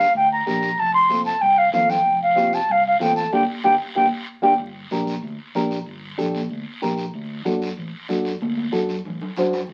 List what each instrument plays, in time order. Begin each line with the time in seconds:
Already playing: flute F5
0.15 fingered electric bass D2, flute G5, high conga, long guiro
0.32 flute A#5
0.46 fingered electric bass A#1, nylon-string guitar D4 G4 A#4, flute A#5, high conga, short guiro
0.62 short guiro
0.78 fingered electric bass F1, flute A5, high conga, long guiro
0.94 flute C6
1.10 nylon-string guitar C4 F4 A4, high conga, short guiro
1.25 flute A5, short guiro
1.41 fingered electric bass C2, flute G5, high conga, long guiro
1.58 flute F5
1.73 fingered electric bass A1, nylon-string guitar C4 F4 A4, flute F5, high conga, low conga, short guiro
1.89 flute G5, low conga, short guiro
2.05 fingered electric bass F1, high conga, long guiro
2.22 flute F5
2.35 nylon-string guitar C4 F4 G4, high conga, short guiro
2.53 flute A5, short guiro
2.69 fingered electric bass C2, flute F5, high conga, long guiro
2.87 flute F5
3.00 fingered electric bass A1, nylon-string guitar C4 F4 A4, flute G5, high conga, short guiro
3.16 flute A5, short guiro
3.33 fingered electric bass G1, nylon-string guitar A#3 D4 G4, flute G5, high conga, long guiro
3.64 fingered electric bass G1, nylon-string guitar A#3 D4 G4, flute G5, high conga, long guiro
3.95 fingered electric bass G1, nylon-string guitar A#3 D4 G4, flute G5, high conga, long guiro
4.42 fingered electric bass G1, nylon-string guitar A#3 D4 G4, flute G5, high conga, long guiro
4.59 fingered electric bass G1, long guiro
4.91 fingered electric bass A#1, nylon-string guitar D4 G4 A#4, high conga, short guiro
5.07 high conga, short guiro
5.22 fingered electric bass D2, long guiro
5.55 fingered electric bass A#1, nylon-string guitar D4 G4 A#4, high conga, short guiro
5.71 short guiro
5.86 fingered electric bass G1, long guiro
6.18 fingered electric bass A#1, nylon-string guitar D4 G4 A4, high conga, short guiro
6.35 high conga, short guiro
6.51 fingered electric bass D2, long guiro
6.82 fingered electric bass A#1, nylon-string guitar D4 G4 A#4, high conga, short guiro
6.98 short guiro
7.14 fingered electric bass D2, long guiro
7.45 fingered electric bass F#2, nylon-string guitar D4 F#4 A4, high conga, short guiro
7.62 short guiro
7.77 fingered electric bass A1, long guiro
8.09 fingered electric bass F#2, nylon-string guitar D4 F#4 A4, high conga, short guiro
8.25 short guiro
8.41 fingered electric bass D2, high conga, long guiro
8.57 high conga
8.72 fingered electric bass F#2, nylon-string guitar D4 F#4 A4, short guiro
8.89 low conga, short guiro
9.05 fingered electric bass A1, low conga, long guiro
9.21 low conga
9.37 fingered electric bass F#2, nylon-string guitar D4 F#4 C5, low conga, short guiro
9.53 low conga, short guiro
9.68 fingered electric bass G1, long guiro